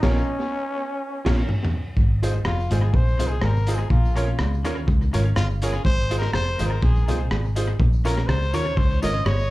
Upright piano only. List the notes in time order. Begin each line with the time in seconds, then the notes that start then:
0.03 C#4 F4 A#4 C#5
1.26 C#4 F4 A#4 C#5
2.23 D#4 F4 G#4 C5
2.46 G#4 C5
2.71 D#4 F4 G#4 C5
3.19 D#4 F4 G#4 C5
3.68 D#4 F4 G#4 C5
4.15 C#4 F4 A#4 C#5
4.38 A#4 C#5
4.64 C#4 F4 A#4 C#5
5.13 C#4 F4 A#4 C#5
5.62 C#4 F4 A#4 C#5
6.11 D#4 F4 G#4 C5
6.33 G#4 C5
6.59 D#4 F4 G#4 C5
7.08 D#4 F4 G#4 C5
7.55 D#4 F4 G#4 C5
8.05 C#4 F4 A#4 C#5
8.28 A#4 C#5
8.53 C#4 F4 A#4 C#5
9.02 C#4 F4 A#4 C#5